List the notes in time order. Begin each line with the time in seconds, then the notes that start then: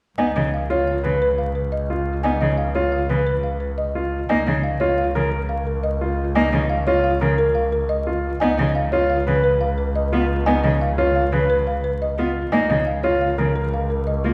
0.18 C#2 B3 D#4 G#5
0.36 C#3 D#5
0.54 F5
0.70 F4 C#5
0.88 F5
1.04 C#3 B4
1.22 B4
1.38 F5
1.55 B4
1.72 D#5
1.90 F4
2.23 B3 D#4 G#5
2.41 C#3 D#5
2.57 F5
2.75 F4 C#5
2.92 F5
3.09 C#3 B4
3.27 B4
3.43 F5
3.60 B4
3.78 D#5
3.95 F4
4.29 C#2 A#3 D#4 G#5
4.46 C#3 D#5
4.63 F5
4.80 F4 C#5
4.98 F5
5.15 C#3 A#4
5.32 A#4
5.49 F5
5.67 A#4
5.83 D#5
6.01 F4
6.35 A#3 D#4 G#5
6.52 C#3 D#5
6.70 F5
6.87 F4 C#5
7.04 F5
7.21 C#3 A#4
7.38 A#4
7.55 F5
7.72 A#4
7.89 D#5
8.07 F4
8.40 C#2 B3 D#4 G#5
8.58 C#3 D#5
8.75 F5
8.92 F4 C#5
9.10 F5
9.27 C#3 B4
9.44 B4
9.61 F5
9.78 B4
9.95 D#5
10.13 B3 F4
10.46 B3 D#4 G#5
10.64 C#3 D#5
10.81 F5
10.98 F4 C#5
11.15 F5
11.33 C#3 B4
11.50 B4
11.67 F5
11.84 B4
12.02 D#5
12.18 B3 F4
12.52 C#2 A#3 D#4 G#5
12.70 C#3 D#5
12.87 F5
13.03 F4 C#5
13.21 F5
13.38 C#3 A#4
13.56 A#4
13.74 F5
13.90 A#4
14.07 D#5
14.24 A#3 F4